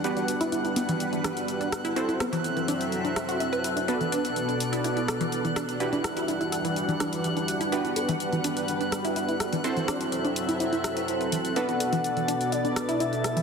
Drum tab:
HH |xxxxxxxxxxxxxxxx|xxxxxxxxxxxxxxxx|xxxxxxxxxxxxxxxx|xxxxxxxxxxxxxxxx|
SH |xxxxxxxxxxxxxxxx|xxxxxxxxxxxxxxxx|xxxxxxxxxxxxxxxx|xxxxxxxxxxxxxxxx|
SD |----------r---r-|--r-------r-----|----------r---r-|--r-------r-----|

HH |xxxxxxxxxxxxxxxx|xxxxxxxxxxxxxxxx|xxxxxxxxxxxxxxxx|
SH |xxxxxxxxxxxxxxxx|xxxxxxxxxxxxxxxx|xxxxxxxxxxxxxxxx|
SD |----------r---r-|--r-------r-----|----------r---r-|